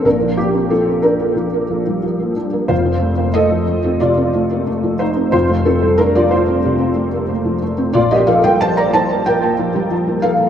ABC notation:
X:1
M:4/4
L:1/16
Q:1/4=92
K:Bb
V:1 name="Felt piano"
[DB]2 [B,G]2 [CA]2 [DB]8 z2 | [Fc]4 [Ae]4 [Fd]6 [Ec]2 | [Fc]2 [CA]2 [DB] [Fd] [Fc]8 z2 | [Fd] [Ge] [Af] [Bg] [ca] [db] [ca]2 [Bg]6 [Af]2 |]
V:2 name="Felt piano"
[B,,,B,,B,] F,2 C F, B,2 B, F, B, F, G, F, B, D B, | [F,,,F,,] C A, B, A, F, A, C C, C A, B, A, F, A, C | [F,,,F,,] A, F, G, A, F, A, C C, C A, B, A, F, A, C | [B,,,B,,] B, F, G, F, B, F, B, F, B, F, G, F, B, F, B, |]